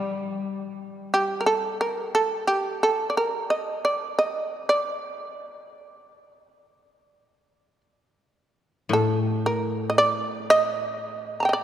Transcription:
Already playing: G3 G4
1.14 G4
1.41 A#4
1.46 A4
1.81 A#4
2.15 A4
2.47 G4
2.83 A4
3.10 D5
3.17 A#4
3.50 D#5
3.85 D5
4.19 D#5
4.69 D5
8.89 A2
8.93 A4
9.24 G4
9.46 A#4
9.90 D#5
9.98 D5
10.50 D#5
11.40 A5 A#5
11.45 D#5 G5
11.53 D5

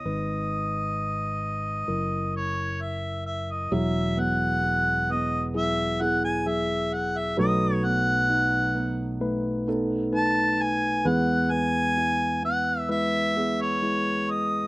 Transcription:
Already playing: D#5
0.05 G#1 G#2 G#3 D#4 B4
1.87 F#1 F#2 F#3 E4 A#4
2.36 C#5
2.81 E5
3.26 E5
3.51 D#5
3.72 E1 E2 F#3 E4 G#4 E5
4.17 B3 F#5
4.63 E4
5.09 B3 D#5
5.54 F#3 E4 G#4 E5
6.00 B3 E4 G#4 F#5
6.24 G#5
6.46 F#3 E4 G#4 E5
6.93 F#5
7.18 E5
7.37 B1 B2 F#3 A3 D#4 A4 B4 D#5
7.74 C#5
7.84 B3 F#5
8.30 D#4
8.75 B3
9.21 A3 D#4 B4
9.68 B3 D#4 A4
10.13 A3 D#4 B4 A5
10.63 G#5
11.05 E2 E3 G#3 B3 E4 G#4 B4 F#5
11.51 B3 G#5
11.97 E4
12.43 B3 F#5
12.89 G#3 E4 B4 E5
13.36 B3 E4 G#4
13.61 C#5
13.82 G#3 E4 G#4
14.31 D#5

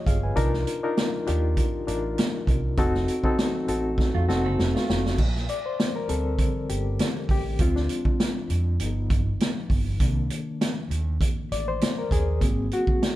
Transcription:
Already playing: F4 G4 C#5 D#5
0.07 G1 G#4 F5, kick, closed hi-hat
0.23 B4 G#5
0.36 C2 D4 D#4 F4 A#4, kick, closed hi-hat
0.54 snare
0.67 closed hi-hat
0.83 D4 D#4 F4 A#4
0.97 snare, closed hi-hat
1.27 D#2 D4 D#4 F4 G4, closed hi-hat
1.57 kick, closed hi-hat
1.87 A1 D4 D#4 F4 A#4, closed hi-hat
2.18 snare, closed hi-hat
2.47 C2, kick, closed hi-hat
2.77 F1 C4 D#4 F#4 A4, kick, closed hi-hat
2.95 snare
3.08 closed hi-hat
3.24 C4 D#4 F#4 A4, kick
3.39 snare, closed hi-hat
3.68 A1 C4 D#4 F#4 A4, closed hi-hat
3.98 kick, snare
4.15 F2 A3 F4
4.28 F1 A3 C4 D#4 F#4 A4, snare
4.45 F#1 C4 A4
4.59 F1, snare
4.74 A3 F4, snare
4.89 F1, snare
5.06 snare
5.18 A#1, kick, crash
5.36 snare
5.49 D5, closed hi-hat
5.66 C5
5.80 snare, closed hi-hat
5.96 A#4
6.08 D2 D3 G3 C4 A4, closed hi-hat
6.39 kick, closed hi-hat
6.69 G1 G4, closed hi-hat
6.99 snare, closed hi-hat
7.29 A1 G4, kick, open hi-hat
7.59 D2 F3 G#3 C4 F4, kick, closed hi-hat
7.76 D4, snare
7.89 closed hi-hat
8.05 kick
8.20 snare, closed hi-hat
8.50 F2, closed hi-hat
8.80 G1 F3 B3 D#4, closed hi-hat
9.10 kick, closed hi-hat
9.40 snare, closed hi-hat
9.70 G1, kick, open hi-hat
10.00 C2 D#3 A#3 D4, kick, closed hi-hat
10.30 closed hi-hat
10.61 snare, closed hi-hat
10.91 D#2, closed hi-hat
11.21 kick, closed hi-hat
11.52 A1 D5, closed hi-hat
11.68 C5
11.81 snare, closed hi-hat
11.98 A#4
12.11 D#2 G#4, kick, closed hi-hat
12.41 G#1 F#3 A#3 C4, kick, closed hi-hat
12.71 F#4, closed hi-hat
12.87 kick
13.03 snare, closed hi-hat

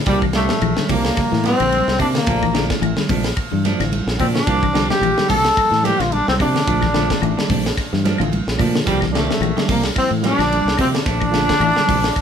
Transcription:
0.06 C2 F3 G3 A#3 D4 G4, kick, snare, ride bell, high conga, low conga
0.22 E3, kick, claves
0.33 A#2 F3 G3 A3 A#3 D4 G4, snare, ride bell
0.37 A3
0.49 C3, snare
0.61 A#1 E3, ride bell, claves
0.77 D3, snare, high conga
0.88 C2 C3 F3 A#3 D4 G4, kick, open hi-hat, high conga, low conga
1.04 A#3 D4 G4, snare, ride bell
1.15 F3 G3 A#3 D4, kick, snare, ride bell, low conga, claves
1.32 A2 E3, snare
1.44 F3 G3 A#3 C4 D4 F4 G4, muted clean electric guitar stroke, snare, ride bell, high conga
1.60 A#1 D3, ride bell, claves
1.72 ride bell, high conga
1.88 C2, snare
1.99 C3 A#3 D4 G4, kick, open hi-hat, high conga, low conga, claves
2.15 D3 A#3, snare, ride bell
2.26 A#1 F3 A3 C4 D4, kick, ride bell, high conga, low conga
2.42 E3, kick, claves
2.52 D3 F3 A3 C4 D4 E4, snare, ride bell
2.70 C3, kick, snare, ride bell
2.82 A1 E3, ride bell, claves
2.97 D3, snare, high conga
3.09 A#1 C3 F3 A3 D4, kick, open hi-hat, high conga, low conga
3.24 snare, ride bell
3.37 kick, ride bell, claves
3.52 G2 E3
3.64 F3 A3 D4, snare, ride bell, high conga
3.78 A1 D3 F3 A3 C4 D4, snare, ride bell, claves
3.92 ride bell, high conga
4.07 A#1, snare
4.18 A#2 F3 A3 C4 D4, kick, open hi-hat, high conga, low conga, claves
4.34 D3 D4, snare
4.47 C2 F3 G3 A#3 D4 G4, kick, ride bell
4.62 E3, kick, claves
4.73 D3 F3 G3 A#3 D4 G4, snare, ride bell
4.89 C3 G4, snare
5.01 A#1 E3, ride bell, claves
5.18 D3, snare, high conga
5.29 C2 C3 F3 A#3 D4 G4 A4, kick, open hi-hat, high conga, low conga
5.44 snare, ride bell
5.56 F3 G3 A#3 D4, kick, ride bell, claves
5.71 A2 E3, snare
5.82 F3 G3 A#3 D4 G4, snare, ride bell, high conga
6.00 A#1 D3 F4, snare, ride bell, claves
6.12 D4, ride bell, high conga
6.28 C2 C4, snare, high conga
6.39 C3 F3 A#3 D4 G4, kick, open hi-hat, high conga, low conga, claves
6.55 D3, snare, ride bell
6.66 A#1 F3 A3 C4 D4, kick, ride bell, high conga, low conga
6.81 E3, kick, snare, claves
6.94 D3 F3 A3 C4 D4 F4, snare, ride bell
7.10 C3, kick, snare, ride bell
7.22 A1 E3, ride bell, claves
7.37 D3 A3 D4, snare, high conga
7.49 A#1 C3 F3 A3 D4, kick, open hi-hat, high conga, low conga
7.66 snare, ride bell
7.77 kick, snare, ride bell, claves
7.93 G2 E3, snare
8.04 F3 A3 D4, snare, ride bell, high conga
8.18 A1 D3 F3 A3 C4 F4, ride bell, claves
8.32 ride bell, high conga
8.47 A#1, snare
8.57 A#2 F3 A3 C4 D4, kick, open hi-hat, claves
8.61 high conga, low conga
8.75 D3, snare
8.84 C2 F3 G3 A#3 D4 G4, kick, snare, ride bell, high conga, low conga
8.88 G3
9.01 E3, kick, snare, claves
9.11 A#2 F3 G3 A#3 D4
9.15 D3 A3 G4, snare, ride bell
9.30 C3, snare
9.41 A#1 E3, ride bell, claves
9.57 D3 A#3 D4 G4, snare, high conga
9.68 C2 C3 F3 A#3 D4 G4, kick, open hi-hat, high conga, low conga
9.83 snare, ride bell
9.94 F3 G3 A#3 C4 E4, kick, ride bell, claves
9.99 C4
10.11 A2 E3
10.22 F3 G3 A#3 D4 G4, snare, ride bell, high conga
10.26 D4
10.38 A#1 D3, snare, ride bell, claves
10.52 ride bell, high conga
10.65 C2, snare
10.77 C3 F3 A#3 C4 D4 G4, kick, open hi-hat, high conga, low conga, claves
10.82 C4
10.94 D3 D4, snare, ride bell
11.05 A#1 F3 A3 C4 D4, kick, snare, ride bell
11.20 E3, kick, claves
11.30 D3 F3 A3 C4 D4 F4, snare, ride bell
11.49 D3, kick, snare, ride bell
11.60 A1 E3, ride bell, claves
11.76 D3, snare, high conga
11.87 A#1 C3 F3 A3 D4, kick, open hi-hat, high conga, low conga
12.04 snare, ride bell
12.16 kick, ride bell, claves

